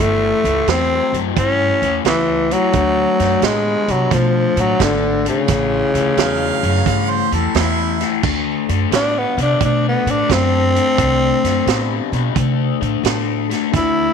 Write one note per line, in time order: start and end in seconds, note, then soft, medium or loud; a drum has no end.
0.00 0.30 G1 medium
0.00 0.40 A2 medium
0.00 0.41 E3 medium
0.00 0.70 A3 loud
0.44 0.60 C#2 medium
0.44 0.65 A2 medium
0.44 0.65 E3 medium
0.44 closed hi-hat medium
0.67 0.99 E2 medium
0.67 1.09 A2 medium
0.67 1.09 F#3 medium
0.67 1.19 C4 medium
0.67 snare loud
0.67 closed hi-hat medium
1.13 1.29 F#2 medium
1.13 1.34 A2 medium
1.13 1.34 F#3 medium
1.13 closed hi-hat medium
1.36 1.68 G2 medium
1.36 1.77 A2 medium
1.36 1.77 E3 loud
1.36 2.02 C#4 medium
1.36 kick loud
1.36 closed hi-hat medium
1.82 1.98 E2 medium
1.82 2.03 A2 medium
1.82 2.03 E3 medium
1.82 closed hi-hat medium
2.05 2.52 C#2 medium
2.05 2.46 A2 medium
2.05 2.46 E3 loud
2.05 2.54 E3 medium
2.05 snare loud
2.05 closed hi-hat medium
2.50 2.71 A2 medium
2.50 2.71 E3 medium
2.50 3.45 F#3 medium
2.50 closed hi-hat medium
2.73 3.05 D2 medium
2.73 3.15 D3 medium
2.73 3.15 A3 medium
2.73 kick loud
2.73 closed hi-hat medium
3.19 3.35 F#2 medium
3.19 3.40 D3 medium
3.19 3.40 A3 medium
3.19 snare soft
3.19 closed hi-hat medium
3.41 3.74 A2 medium
3.41 3.83 D3 medium
3.41 3.92 G#3 medium
3.41 3.84 B3 medium
3.41 snare loud
3.41 closed hi-hat medium
3.88 4.04 C3 medium
3.88 4.08 D3 medium
3.88 4.15 F#3 medium
3.88 4.09 B3 medium
3.88 closed hi-hat medium
4.10 4.43 B2 medium
4.10 4.52 D3 medium
4.10 4.62 F3 medium
4.10 4.52 A3 medium
4.10 kick loud
4.10 snare soft
4.10 closed hi-hat medium
4.56 4.72 A2 medium
4.56 4.77 D3 medium
4.56 4.77 A3 medium
4.56 closed hi-hat medium
4.60 4.84 F#3 medium
4.79 5.27 G#1 medium
4.79 5.21 D3 medium
4.79 5.27 D3 medium
4.79 5.21 A3 medium
4.79 kick medium
4.79 snare loud
4.79 closed hi-hat medium
5.25 7.52 C#3 medium
5.25 5.46 D3 medium
5.25 5.46 A3 medium
5.25 closed hi-hat medium
5.47 5.80 A1 medium
5.47 5.89 A2 medium
5.47 5.89 E3 medium
5.47 kick loud
5.47 snare soft
5.47 closed hi-hat medium
5.94 6.10 C#2 medium
5.94 6.15 A2 medium
5.94 6.15 E3 medium
5.94 closed hi-hat medium
6.17 6.49 E2 medium
6.17 6.59 A2 medium
6.17 6.59 F#3 loud
6.17 7.12 F5 medium
6.17 snare loud
6.17 closed hi-hat medium
6.63 6.79 F#2 medium
6.63 6.83 A2 medium
6.63 6.84 F#3 medium
6.63 closed hi-hat medium
6.86 7.18 G2 medium
6.86 7.27 A2 medium
6.86 7.27 E3 medium
6.86 kick loud
6.86 closed hi-hat medium
7.11 7.32 C5 medium
7.32 7.47 E2 medium
7.32 7.52 A2 medium
7.32 7.52 E3 medium
7.32 7.55 A4 medium
7.32 closed hi-hat medium
7.54 8.02 E2 medium
7.54 7.96 A2 medium
7.54 7.96 E3 medium
7.54 8.11 E4 medium
7.54 snare loud
7.54 closed hi-hat medium
8.00 8.21 A2 medium
8.00 8.21 E3 medium
8.00 snare soft
8.00 closed hi-hat medium
8.23 8.55 D2 medium
8.23 8.64 D3 medium
8.23 8.65 A3 medium
8.23 kick loud
8.23 crash medium
8.69 8.85 F#2 medium
8.69 8.90 D3 medium
8.69 8.90 A3 medium
8.69 closed hi-hat medium
8.91 9.23 A2 medium
8.91 9.33 D3 medium
8.91 9.33 B3 medium
8.91 9.20 D4 loud
8.91 snare loud
8.91 closed hi-hat medium
9.18 9.39 B3 medium
9.37 9.53 C3 medium
9.37 9.58 D3 medium
9.37 9.58 B3 medium
9.37 closed hi-hat medium
9.42 9.62 D4 medium
9.60 9.92 B2 medium
9.60 10.02 D3 medium
9.60 10.02 A3 medium
9.60 kick loud
9.60 closed hi-hat medium
9.65 9.85 D4 medium
9.88 10.12 B3 medium
10.06 10.22 A2 medium
10.06 10.27 D3 medium
10.06 10.27 A3 medium
10.06 closed hi-hat medium
10.10 10.34 D4 medium
10.29 10.77 F#2 medium
10.29 10.71 D3 medium
10.29 10.71 A3 medium
10.29 12.33 C4 loud
10.29 kick medium
10.29 snare loud
10.29 closed hi-hat medium
10.75 10.96 D3 medium
10.75 10.96 A3 medium
10.75 closed hi-hat medium
10.98 11.30 C2 medium
10.98 11.40 D3 medium
10.98 11.40 A3 medium
10.98 kick loud
10.98 closed hi-hat medium
11.44 11.60 F#2 medium
11.44 11.65 D3 medium
11.44 11.65 A3 medium
11.44 snare soft
11.44 closed hi-hat medium
11.66 11.98 A2 medium
11.66 12.08 D3 medium
11.66 12.08 B3 medium
11.66 snare loud
11.66 closed hi-hat medium
12.12 12.28 B2 medium
12.12 12.33 D3 medium
12.12 12.34 B3 medium
12.12 closed hi-hat soft
12.35 12.68 C3 medium
12.35 12.77 D3 medium
12.35 12.77 A3 medium
12.35 kick loud
12.35 closed hi-hat medium
12.81 12.97 A2 medium
12.81 13.02 D3 medium
12.81 13.02 A3 medium
12.81 closed hi-hat medium
13.03 13.51 A2 medium
13.03 13.46 D3 medium
13.03 13.46 A3 medium
13.03 snare loud
13.03 closed hi-hat medium
13.50 13.71 D3 medium
13.50 13.71 A3 medium
13.50 snare soft
13.50 closed hi-hat medium
13.72 14.05 D2 medium
13.72 14.13 D3 medium
13.72 14.13 A3 loud
13.72 14.13 E4 medium
13.72 kick loud
13.72 snare soft
13.72 closed hi-hat medium